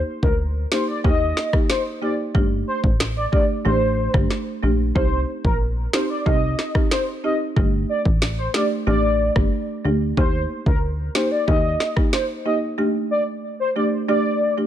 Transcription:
Already playing: marimba A#3 D#4 G4
0.23 analog synth bass D2, soft synth lead A#4, kick
0.72 marimba A#3 D#4 G4, soft synth lead C5, snare
0.88 soft synth lead D5
1.04 analog synth bass D#2, marimba A#3 D#4 G4, soft synth lead D#5, kick
1.37 snare
1.53 marimba A#3 D#4 G4, kick, cross-stick
1.70 soft synth lead C5, snare
2.02 marimba A#3 D#4 G4, soft synth lead D5
2.35 analog synth bass G1, marimba A3 D4 G4, kick
2.67 soft synth lead C5
2.84 analog synth bass A1, kick
3.00 snare
3.17 soft synth lead D5
3.32 marimba A3 D4 G4, soft synth lead D5, kick
3.65 analog synth bass A1, marimba A3 D4 G4, soft synth lead C5
4.14 analog synth bass G1, marimba A3 D4 G4, kick, cross-stick
4.30 snare
4.63 analog synth bass A#1, marimba A3 D4 G4
4.95 analog synth bass C2, marimba C4 D#4 G4, soft synth lead C5, kick
5.45 analog synth bass A#1, soft synth lead A#4, kick
5.93 marimba C4 D#4 G4, soft synth lead C5, snare
6.10 soft synth lead D5
6.26 analog synth bass C2, marimba C4 D#4 G4, soft synth lead D#5, kick
6.59 snare
6.75 marimba C4 D#4 G4, kick, cross-stick
6.91 soft synth lead C5, snare
7.24 marimba C4 D#4 G4, soft synth lead D#5
7.56 analog synth bass G1, marimba A3 D4 G4, kick
7.89 soft synth lead D5
8.05 analog synth bass A1, kick
8.22 snare
8.38 soft synth lead C5
8.54 marimba A3 D4 G4, soft synth lead D5, snare
8.87 analog synth bass A1, marimba A3 D4 G4, soft synth lead D5
9.36 analog synth bass G1, marimba A3 D4 G4, kick, cross-stick
9.85 analog synth bass D2, marimba A3 D4 G4
10.17 analog synth bass D#2, marimba A#3 D#4 G4, soft synth lead C5, kick
10.66 analog synth bass D2, soft synth lead A#4, kick
11.15 marimba A#3 D#4 G4, soft synth lead C5, snare
11.32 soft synth lead D5
11.48 analog synth bass D#2, marimba A#3 D#4 G4, soft synth lead D#5, kick
11.80 snare
11.96 marimba A#3 D#4 G4, kick, cross-stick
12.13 soft synth lead C5, snare
12.45 marimba A#3 D#4 G4, soft synth lead D#5
12.78 marimba A3 D4 G4
13.11 soft synth lead D5
13.60 soft synth lead C5
13.76 marimba A3 D4 G4, soft synth lead D5
14.08 marimba A3 D4 G4, soft synth lead D5
14.57 marimba A3 D4 G4

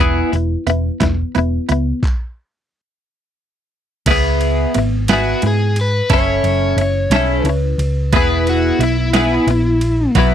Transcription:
Already playing: clean electric guitar B3
0.00 picked electric bass E1, clean electric guitar E4 G#4
0.32 picked electric bass E1, clean electric guitar B3 E4, closed hi-hat
0.67 picked electric bass E1, clean electric guitar B3 E4, closed hi-hat
1.00 picked electric bass E1, clean electric guitar B3 E4, kick, snare, closed hi-hat
1.35 picked electric bass E1, clean electric guitar B3 E4, closed hi-hat
1.69 picked electric bass C#2, clean electric guitar B3 E4, closed hi-hat
2.03 kick, clap
4.06 picked electric bass C#2, clean electric guitar B3 E4 G#4, kick, crash, ride
4.41 ride
4.74 picked electric bass G#1, clean electric guitar B3 E4, ride
5.08 clean electric guitar B3 E4 G#4, overdriven electric guitar F#4, snare, ride
5.42 picked electric bass G#2, clean electric guitar B3 E4, ride
5.47 overdriven electric guitar G#4
5.76 ride
5.81 overdriven electric guitar B4
6.10 picked electric bass F#1, clean electric guitar C#4 E4 A4, overdriven electric guitar C#5, kick, ride
6.43 picked electric bass F#1, ride
6.77 picked electric bass F#1, clean electric guitar C#4 E4, ride
7.10 picked electric bass B1, clean electric guitar C#4 E4 A4, snare, ride
7.43 picked electric bass C#2, clean electric guitar C#4 E4, overdriven electric guitar B4, ride
7.78 picked electric bass C#2, ride
8.13 picked electric bass E1, clean electric guitar B3 E4 G#4, overdriven electric guitar B4, kick, ride
8.47 overdriven electric guitar F#4, ride
8.79 picked electric bass B1, clean electric guitar B3 E4, overdriven electric guitar E4, ride
9.13 clean electric guitar B3 E4 G#4, snare, ride
9.47 picked electric bass A#1, clean electric guitar B3 E4, ride
9.81 ride
10.15 picked electric bass B1, clean electric guitar F#3 B3 E4, kick, ride

